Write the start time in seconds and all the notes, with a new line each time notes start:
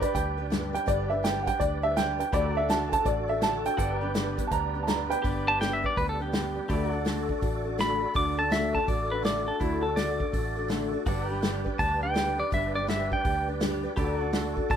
Already playing: G4 A4 B4 D5
0.00 G3 D4 G4 B4 D5, kick, closed hi-hat
0.05 B4
0.14 D2 G3 D4 G4 B4 G5, kick, closed hi-hat
0.37 G3 D4 G4 B4
0.50 G2 D3 G3 D4 G4 B4, snare, closed hi-hat
0.73 G3 D4 G4 B4 G5, closed hi-hat
0.86 G1 G2 D3 G3 D4 G4 B4 D5, kick, closed hi-hat
1.10 G3 D4 G4 B4 E5
1.23 G2 D3 G3 D4 G4 B4 G5, snare, closed hi-hat
1.43 B4 F#5
1.47 G3 D4 G4 G5, kick, closed hi-hat
1.59 D2 G3 D4 G4 B4 D5, kick, closed hi-hat
1.82 G3 D4 G4 B4 E5
1.96 G2 D3 G3 D4 G4 B4 G5, snare, closed hi-hat
2.18 G3 D4 G4 B4 G5, closed hi-hat
2.31 D2 D3 A3 D4 F#4 G4 A4 B4 D5, kick, closed hi-hat
2.53 F#4 A4
2.57 D4 F#4 A4 E5
2.69 D3 A3 D4 F#4 A4 A5, snare, closed hi-hat
2.89 A4 G#5, kick, closed hi-hat
2.93 D4 F#4 A5
3.04 A1 A3 D4 F#4 A4 D5, kick, closed hi-hat
3.28 D4 F#4 A4 E5
3.41 D3 A3 D4 F#4 A4 A5, snare, closed hi-hat
3.65 D4 F#4 A4 G5, closed hi-hat
3.76 G1 G2 D3 G3 B3 D4 F#4 G4 A4 B4 D5, kick, closed hi-hat
3.97 G4 B4
4.02 G3 B3 D4 B4
4.14 G2 D3 G3 B3 D4 B4, snare, closed hi-hat
4.37 G3 B3 D4 B4, kick, closed hi-hat
4.47 D2 G3 A5, closed hi-hat
4.51 B3 D4 B4 A#5, kick
4.74 G3 B3 D4 B4
4.83 A5
4.87 G2 D3 G3 B3 D4 B4 A#5, snare, closed hi-hat
5.10 G3 B3 D4 B4 G5, closed hi-hat
5.22 G1 G2 D3 G3 B3 D4 G4 B4 D5, kick, open hi-hat
5.47 G3 B3 D4 B4 A5
5.60 G2 D3 G3 B3 D4 B4 G5, snare, open hi-hat
5.73 E5
5.83 G3 B3 D4 B4 D5, kick
5.96 D2 G3 B3 D4 B4, kick, open hi-hat
6.09 A4
6.19 G3 B3 D4 G4 B4
6.32 G2 D3 G3 B3 D4 B4, snare, open hi-hat
6.54 G3 B3 D4 B4
6.68 D2 D3 A3 D4 F#4 G4 A4 B4 D5, kick, open hi-hat
6.89 F#4 A4
6.94 D4 A4
7.05 D3 A3 D4 F#4 A4, snare, open hi-hat
7.28 D4 F#4 A4, kick
7.41 A1 A3 D4 F#4 A4, kick, open hi-hat
7.64 D4 F#4 A4
7.78 D3 A3 D4 F#4 A4 B5, snare, open hi-hat
8.00 D4 F#4 A4
8.14 D2 D3 A3 D4 F#4 A4 D6, kick, open hi-hat
8.37 D4 F#4 A4 A5
8.50 D3 A3 D4 F#4 A4 E5, snare, open hi-hat
8.73 D4 F#4 A4 A5, kick
8.87 A1 A3 D4 F#4 A4 D5, kick, open hi-hat
9.10 D4 F#4 A4 B4
9.23 D3 A3 D4 F#4 A4 D5, snare, open hi-hat
9.46 D4 F#4 A4
9.59 D2 D3 A3 D4 E4 F#4 A4 D5, kick, open hi-hat
9.82 D4 F#4 A4
9.96 D3 A3 D4 F#4 A4 D5, snare, open hi-hat
10.19 D4 F#4 A4, kick
10.32 A1 A3 D4 F#4 A4, kick, open hi-hat
10.56 D4 F#4 A4
10.68 D3 A3 D4 F#4 A4, snare, open hi-hat
10.92 D4 F#4 A4
11.05 G1 G2 D3 G3 D4 F#4 G4 A4 B4 D5, kick, open hi-hat
11.27 G4 B4
11.31 G3 D4 B4
11.42 G2 D3 G3 D4 G4 B4, snare, open hi-hat
11.64 G3 D4 G4 B4, kick
11.78 D2 G3 D4 G4 A5, kick, open hi-hat
12.01 G3 D4 G4 B4 G5
12.14 G2 D3 G3 D4 G4 B4, snare, open hi-hat
12.38 G3 D4 G4 B4 D5
12.51 G1 G2 D3 G3 D4 G4 B4 E5, kick, open hi-hat
12.74 G3 D4 G4 B4 D5
12.87 G2 D3 G3 D4 G4 B4 E5, snare, open hi-hat
13.11 G3 D4 G4 B4 G5, kick
13.24 D2 G3 D4 G4 B4, kick, open hi-hat
13.48 G3 D4 G4 B4
13.60 G2 D3 G3 D4 G4 B4, snare, open hi-hat
13.83 G3 D4 G4 B4
13.96 D2 D3 A3 D4 F#4 G4 A4 B4 D5, kick, open hi-hat
14.17 F#4 A4
14.21 D4 F#4 A4
14.33 D3 A3 D4 F#4 A4, snare, open hi-hat
14.56 D4 F#4 A4, kick
14.69 A1 A3 D4 F#4 A5, kick, open hi-hat